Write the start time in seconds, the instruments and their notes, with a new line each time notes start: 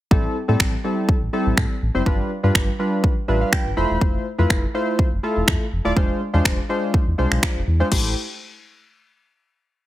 0.11 sub bass A1, synth keys G3 C4 E4 A4, kick
0.48 sub bass A2, synth keys G3 C4 E4 A4
0.60 sub bass A1, finger snap, kick
0.84 synth keys G3 C4 E4 A4
1.09 kick
1.22 sub bass A1
1.33 synth keys G3 C4 E4 A4
1.46 sub bass A1
1.57 sub bass A2, finger snap, kick
1.82 sub bass A1
1.95 sub bass F#1, synth keys G3 C4 E4 C5
2.06 sub bass G1, synth keys G3 D4 F4 B4, kick
2.43 sub bass G2, synth keys G3 D4 F4 B4
2.55 sub bass G1, finger snap, kick
2.79 synth keys G3 D4 F4 B4
3.04 kick
3.28 sub bass A1, synth keys G3 D4 F4 B4 E5
3.41 synth keys F5
3.53 synth keys G5, finger snap, kick
3.66 sub bass G1
3.77 sub bass F1, synth keys A3 E4 F4 C5 B5
3.90 sub bass E1
4.01 sub bass F1, kick
4.38 sub bass F2, synth keys A3 E4 F4 B4
4.50 sub bass F1, finger snap, kick
4.74 synth keys A3 E4 F4 C5
4.99 kick
5.12 sub bass F1
5.23 synth keys A3 E4 F4 A4
5.36 sub bass F1
5.48 sub bass F2, finger snap, kick
5.72 sub bass F1
5.85 sub bass D#1, synth keys A3 E4 F4 D5
5.96 sub bass E1, synth keys G#3 D4 F4 C5, kick
6.33 sub bass E2, synth keys G#3 D4 F4 C5
6.45 sub bass E1, finger snap, kick
6.69 synth keys G#3 D4 F4 C5
6.94 kick
7.07 sub bass E2
7.18 sub bass C2, synth keys G#3 D4 F4 C5
7.31 sub bass B1, finger snap
7.43 sub bass E1, finger snap, kick
7.56 sub bass E1
7.67 sub bass E2
7.80 synth keys G#3 D4 F4 C5
7.92 sub bass A1, synth keys A3 E4 G4 C5, kick, crash